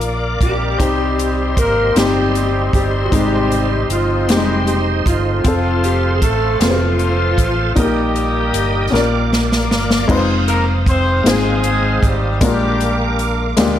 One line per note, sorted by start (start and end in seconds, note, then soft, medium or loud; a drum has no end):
0.00 0.37 A#1 medium
0.00 0.76 A#2 medium
0.00 0.16 A#3 medium
0.00 0.67 A#3 medium
0.00 0.12 D#4 medium
0.00 0.11 F4 medium
0.00 0.69 F4 medium
0.00 0.16 A#4 loud
0.00 0.47 A#4 medium
0.00 0.78 A#4 medium
0.00 0.68 D5 medium
0.00 0.78 D5 soft
0.00 0.79 F5 medium
0.00 0.79 D6 medium
0.00 closed hi-hat soft
0.41 0.76 A#1 medium
0.41 1.55 G3 medium
0.41 1.55 C4 medium
0.41 1.54 D#4 medium
0.41 1.54 G4 medium
0.41 1.55 G4 medium
0.41 kick medium
0.41 closed hi-hat soft
0.78 1.53 C2 medium
0.78 1.92 C3 soft
0.78 1.83 C4 medium
0.78 1.84 D#4 medium
0.78 3.09 G4 medium
0.78 1.85 G4 medium
0.78 3.09 C5 medium
0.78 5.40 D#5 soft
0.78 7.73 C6 medium
0.78 kick medium
0.78 closed hi-hat medium
1.19 closed hi-hat soft
1.56 1.93 G#1 medium
1.56 1.94 A#3 medium
1.56 1.94 A#4 medium
1.56 kick medium
1.56 closed hi-hat medium
1.95 2.69 G1 medium
1.95 2.70 G3 medium
1.95 3.00 C4 medium
1.95 3.09 C4 medium
1.95 3.01 D#4 medium
1.95 3.10 D#4 medium
1.95 2.70 G4 medium
1.95 2.74 G4 medium
1.95 3.02 G4 medium
1.95 snare medium
1.95 closed hi-hat medium
2.35 closed hi-hat soft
2.73 3.09 G1 medium
2.73 3.10 G3 medium
2.73 3.10 G4 medium
2.73 2.84 G4 medium
2.73 kick medium
2.73 closed hi-hat soft
3.06 3.12 F#4 medium
3.10 3.86 G#1 medium
3.10 4.24 C3 medium
3.10 3.86 G3 medium
3.10 4.18 G#3 medium
3.10 4.16 C4 medium
3.10 4.25 C4 medium
3.10 5.42 D#4 medium
3.10 4.17 D#4 medium
3.10 4.25 D#4 medium
3.10 3.86 G4 medium
3.10 3.92 G4 medium
3.10 7.73 C5 medium
3.10 kick medium
3.10 closed hi-hat medium
3.51 closed hi-hat soft
3.89 4.28 G1 medium
3.89 4.29 F3 medium
3.89 4.29 F4 medium
3.89 4.27 F4 medium
3.89 closed hi-hat medium
4.28 5.02 F1 medium
4.28 4.80 G3 medium
4.28 5.33 C4 medium
4.28 5.33 D#4 medium
4.28 4.65 G4 medium
4.28 4.80 G4 medium
4.28 4.36 G4 medium
4.28 snare medium
4.28 closed hi-hat medium
4.37 5.37 G#3 medium
4.67 5.04 G4 medium
4.67 closed hi-hat soft
5.05 5.41 G1 medium
5.05 6.19 F3 medium
5.05 6.19 A3 medium
5.05 6.19 C4 medium
5.05 6.19 F4 medium
5.05 5.85 F4 medium
5.05 kick medium
5.05 closed hi-hat medium
5.44 6.22 F1 medium
5.44 6.49 C4 medium
5.44 6.50 F4 medium
5.44 7.75 A4 medium
5.44 6.51 A4 medium
5.44 7.75 F5 medium
5.44 kick medium
5.44 closed hi-hat medium
5.84 6.14 G4 medium
5.84 closed hi-hat soft
6.15 6.22 G#4 medium
6.22 6.57 A1 medium
6.22 6.61 A3 medium
6.22 6.61 A4 medium
6.22 6.59 A4 medium
6.22 kick medium
6.22 closed hi-hat medium
6.60 7.34 F1 medium
6.60 7.77 F3 medium
6.60 7.74 A3 medium
6.60 7.65 C4 medium
6.60 7.73 C4 medium
6.60 7.77 F4 medium
6.60 7.66 F4 soft
6.60 7.80 F4 medium
6.60 6.69 B4 medium
6.60 snare medium
6.60 closed hi-hat medium
6.70 7.70 C5 medium
6.99 closed hi-hat soft
7.38 7.74 A1 medium
7.38 kick medium
7.38 closed hi-hat medium
7.76 8.50 A#1 medium
7.76 8.89 A#2 medium
7.76 9.70 G3 medium
7.76 9.67 A#3 medium
7.76 8.81 D#4 medium
7.76 9.66 D#4 medium
7.76 7.84 F4 soft
7.76 9.70 G4 medium
7.76 10.06 A#4 medium
7.76 8.91 D#5 medium
7.76 8.91 G5 medium
7.76 8.92 D#6 medium
7.76 kick medium
7.76 closed hi-hat medium
7.80 9.68 G4 medium
7.80 8.83 A#4 medium
7.84 8.85 G4 medium
8.16 closed hi-hat soft
8.53 8.89 G1 medium
8.53 closed hi-hat medium
8.90 9.71 A#1 medium
8.90 10.04 A#2 medium
8.90 8.98 C#4 medium
8.90 9.97 F4 medium
8.90 9.98 A#4 medium
8.90 10.08 D5 soft
8.90 10.08 F5 medium
8.90 10.08 D6 medium
8.94 9.99 D5 medium
8.94 snare soft
9.33 snare medium
9.52 snare medium
9.71 10.06 G1 medium
9.71 snare medium
9.90 snare medium
10.08 11.21 F1 medium
10.08 11.13 G#3 medium
10.08 11.13 C4 medium
10.08 11.13 D#4 medium
10.08 11.14 F4 medium
10.08 10.17 B4 medium
10.08 12.39 C5 medium
10.08 13.79 F5 medium
10.08 12.39 D#6 medium
10.08 kick medium
10.08 crash medium
10.18 11.18 C5 medium
10.48 10.64 A#3 medium
10.48 10.64 A#4 medium
10.48 closed hi-hat soft
10.86 11.24 C4 medium
10.86 11.24 C5 medium
10.86 kick medium
10.86 closed hi-hat soft
11.24 11.99 G#1 medium
11.24 12.29 G#3 medium
11.24 12.03 G#3 medium
11.24 12.29 C4 medium
11.24 12.30 D#4 medium
11.24 12.30 F4 medium
11.24 12.03 G#4 medium
11.24 12.30 C5 medium
11.24 snare loud
11.24 closed hi-hat medium
11.29 12.39 C4 medium
11.29 12.39 D#4 medium
11.64 closed hi-hat soft
12.03 12.38 G#1 medium
12.03 12.43 G3 medium
12.03 12.43 G4 medium
12.03 kick medium
12.03 closed hi-hat soft
12.41 13.53 A#1 medium
12.41 13.54 A#2 medium
12.41 13.26 G3 medium
12.41 13.45 G#3 medium
12.41 13.46 A#3 medium
12.41 13.46 D4 medium
12.41 13.55 D4 medium
12.41 13.47 F4 medium
12.41 13.26 G4 medium
12.41 13.79 A#4 medium
12.41 13.79 D6 medium
12.41 kick medium
12.41 closed hi-hat medium
12.45 13.47 A#4 medium
12.81 closed hi-hat medium
13.19 closed hi-hat soft
13.57 13.79 D2 medium
13.57 13.79 G#3 medium
13.57 13.79 A#3 medium
13.57 13.79 D4 medium
13.57 13.79 F4 medium
13.57 13.79 G4 medium
13.57 snare medium
13.57 closed hi-hat medium